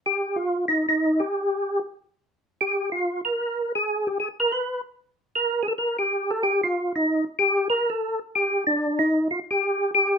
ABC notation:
X:1
M:4/4
L:1/16
Q:"Swing" 1/4=188
K:Gphr
V:1 name="Tonewheel organ"
G4 F4 E2 E4 G2- | G6 z8 z2 | G4 F4 B6 A2- | A2 G2 A2 B2 =B4 z4 |
[K:Gm] z2 B3- B/2 _A/2 =A2 B2 G4 A2 | G2 F4 E4 z2 G4 | B2 A4 z2 G4 D4 | E4 F2 G6 G4 |]